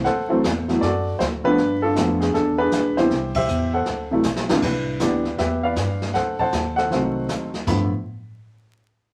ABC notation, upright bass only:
X:1
M:4/4
L:1/8
Q:"Swing" 1/4=158
K:Ddor
V:1 name="Upright bass" clef=bass
D,,2 E,,2 ^F,,2 D,,2 | G,,2 F,,2 E,,2 D,,2 | C,,2 E,,2 D,,2 B,,,2 | C,,2 D,,2 E,,2 G,,2 |
D,,2 _E,,2 C,,2 D,,2 | G,,, z6 z |]